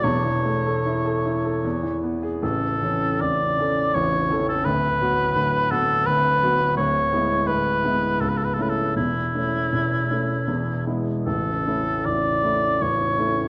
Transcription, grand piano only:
\new Staff \with { instrumentName = "Grand piano" } { \clef bass \time 3/4 \key a \major \tempo 4 = 79 <e,, e,>16 e16 a16 a'16 e'16 a'16 e'16 a'16 e,16 e16 b16 gis'16 | <a,,, a,,>8 <e cis' a'>8 <a,,, a,,>8 <e cis' a'>8 <a,,, a,,>8 <e cis' a'>8 | <d,, d,>8 <fis b fis'>8 <d,, d,>8 <fis b fis'>8 <d,, d,>8 <fis b fis'>8 | <d,, d,>8 <gis b e'>8 <d,, d,>8 <gis b e'>8 <cis,, cis,>8 <a cis' e'>8 |
<e,, e,>8 <a cis' e'>8 <e,, e,>8 <a cis' e'>8 <e,, e,>8 <gis b e'>8 | <a,,, a,,>8 <a cis' e'>8 <a,,, a,,>8 <a cis' e'>8 <a,,, a,,>8 <a cis' e'>8 | }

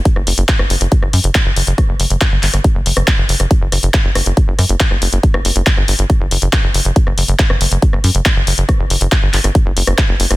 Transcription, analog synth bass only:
\new Staff \with { instrumentName = "Analog synth bass" } { \clef bass \time 4/4 \key g \lydian \tempo 4 = 139 r16 fis,,16 fis,,16 fis,,16 r16 fis,,16 fis,,16 fis,,16 r16 fis,,16 fis,16 fis,,16 r16 fis,,16 fis,,16 fis,,16 | r16 fis,,16 fis,,16 fis,,16 r16 g,,16 g,,16 g,,16 r16 fis,,16 fis,,16 fis,,16 r16 fis,,16 fis,,16 fis,,16 | r16 fis,,16 fis,,16 fis,,16 r16 fis,,16 fis,,16 fis,,16 r16 fis,,16 fis,16 fis,,16 r16 fis,,16 fis,,16 fis,,16 | r16 fis,,16 fis,,16 fis,,16 r16 g,,16 g,,16 g,,16 r16 fis,,16 fis,,16 fis,,16 r16 fis,,16 fis,,16 fis,,16 |
r16 fis,,16 fis,,16 fis,,16 r16 fis,,16 fis,,16 fis,,16 r16 fis,,16 fis,16 fis,,16 r16 fis,,16 fis,,16 fis,,16 | r16 fis,,16 fis,,16 fis,,16 r16 g,,16 g,,16 g,,16 r16 fis,,16 fis,,16 fis,,16 r16 fis,,16 fis,,16 fis,,16 | }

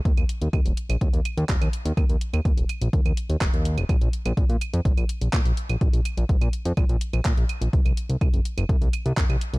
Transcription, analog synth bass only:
\new Staff \with { instrumentName = "Analog synth bass" } { \clef bass \time 4/4 \key ees \dorian \tempo 4 = 125 ees,16 ees,16 r16 ees,16 ees,16 ees,,16 r16 bes,,16 ees,16 ees,16 r16 ees,16 ees,,16 ees,16 r16 ees,16 | ees,16 ees,16 r16 ees,16 ees,16 ees,,16 r16 bes,,16 ees,16 ees,16 r16 ees,16 ees,,16 ees,8 ees,,16 | bes,,16 bes,,16 r16 bes,,16 bes,,16 bes,16 r16 f,16 bes,,16 bes,,16 r16 bes,,16 bes,16 bes,,16 r16 bes,,16 | bes,,16 bes,,16 r16 bes,,16 bes,,16 bes,16 r16 f,16 bes,,16 bes,,16 r16 bes,,16 bes,16 bes,,16 r16 bes,,16 |
c,16 c,16 r16 c,16 c,16 ges,,16 r16 ges,,16 c,16 c,16 r16 c,16 ges,,16 c,16 r16 c,16 | }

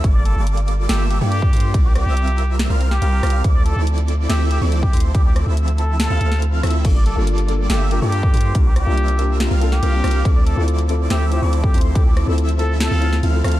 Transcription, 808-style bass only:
\new Staff \with { instrumentName = "808-style bass" } { \clef bass \time 4/4 \key d \minor \tempo 4 = 141 g,,8. g,,4~ g,,16 g,,8. g,8. g,8 | c,8. c,4. c,8. c,8 c,8 | d,8. d,4~ d,16 d,8. d,8. d,8 | d,8. d,4. d,16 d,4 d,8 |
g,,8. g,,4~ g,,16 g,,8. g,8. g,8 | c,8. c,4. c,8. c,8 c,8 | d,8. d,4~ d,16 d,8. d,8. d,8 | d,8. d,4. d,8. d,8 d,8 | }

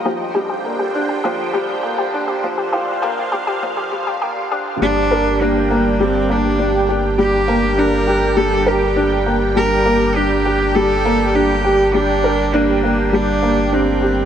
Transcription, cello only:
\new Staff \with { instrumentName = "Cello" } { \time 4/4 \key g \minor \tempo 4 = 101 r1 | r1 | d'4 bes4 c'8 d'4 r8 | g'4 bes'4 a'8 g'4 r8 |
bes'4 g'4 a'4 g'4 | d'4 bes4 d'4 c'4 | }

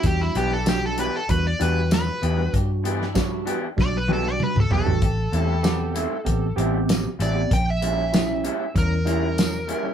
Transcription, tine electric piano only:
\new Staff \with { instrumentName = "Tine electric piano" } { \time 4/4 \key e \dorian \tempo 4 = 96 <g d' fis'>8 r8 <g d' fis'>8. r16 <g d' fis'>16 r16 <g d' fis'>8. r8 <g d' fis'>16~ | <g d' fis'>8 r8 <g d' fis'>8. r16 <g d' fis'>16 r16 <g d' fis'>8. r8 <g d' fis'>16 | r4 <b c' g'>8. r16 <b c' g'>16 r16 <b c' g'>8. r8 <b c' g'>16 | r4 <g cis' e'>8. r16 <g cis' e'>16 r16 <g cis' e'>8. r8 <g cis' e'>16 | }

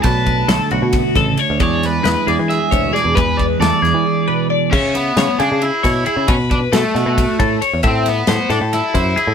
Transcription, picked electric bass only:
\new Staff \with { instrumentName = "Picked electric bass" } { \clef bass \time 7/8 \key e \mixolydian \tempo 4 = 135 b,,4 b,,16 r16 b,,16 b,8 r16 a,,8 r16 d,16 | e,4 e,16 r16 e,16 e8 r16 d,8 r16 e,16 | e,4 e,16 r16 e,16 e16 r4. | cis4 cis16 r16 cis16 cis8 r16 b,8 r16 cis16 |
b,4 b,16 r16 b,16 b,8 r16 a,8 r16 e,16 | a,4 a,16 r16 a,16 a,8 r16 fis,8 r16 a,16 | }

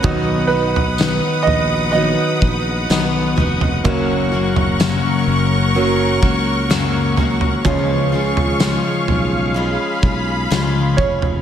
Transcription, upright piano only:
<<
  \new Staff \with { instrumentName = "Upright piano" } { \time 4/4 \key des \mixolydian \tempo 4 = 63 ces''8 ces''4 ees''8 ees''4. r8 | r1 | r2. r8 des''8 | }
  \new Staff \with { instrumentName = "Upright piano" } { \time 4/4 \key des \mixolydian <ges ces' ees'>2 <ges ces' ees'>8 r4. | <ges bes des'>2 <ges bes des'>8 r4. | <f aes des'>1 | }
>>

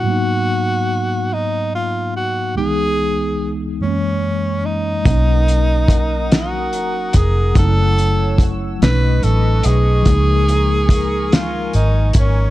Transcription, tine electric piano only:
\new Staff \with { instrumentName = "Tine electric piano" } { \time 6/8 \key ces \lydian \tempo 4. = 48 <aes, ges bes ces' ees'>2. | <des, ees fes aes ces' ees'>4. <ges, fes aes bes c' des'>4. | <fis ais des' dis'>2. | <ges a des' ees' fes'>4. <fis a cis' d' dis'>4. |
<f aes bes ees'>2. | }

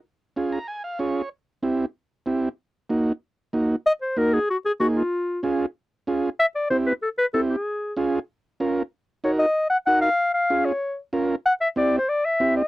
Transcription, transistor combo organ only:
\new Staff \with { instrumentName = "Transistor combo organ" } { \time 4/4 \key ees \dorian \tempo 4 = 190 << { r4. bes''8 aes''8 f''8 des''4 | r1 | r1 | r1 |
r1 | r1 | r1 | r1 |
r1 | r1 | } \\ { r4 <des' f' aes'>8 r4. <des' f' aes'>8 r8 | r4 <c' e' g'>8 r4. <c' e' g'>8 r8 | r4 <bes ees' ges'>8 r4. <bes ees' ges'>8 r8 | r4 <bes ees' ges'>8 r4. <bes ees' aes'>8 r8 |
r4 <des' f' aes'>8 r4. <des' f' aes'>8 r8 | r4 <c' e' g'>8 r4. <c' e' g'>8 r8 | r4 <des' f' aes'>8 r4. <des' f' bes'>8 r8 | r4 <ees' ges' bes'>8 r4. <ees' ges' bes'>8 r8 |
r4 <des' f' aes'>8 r4. <des' f' bes'>8 r8 | r4 <c' e' g'>8 r4. <c' e' g'>8 r8 | } >> }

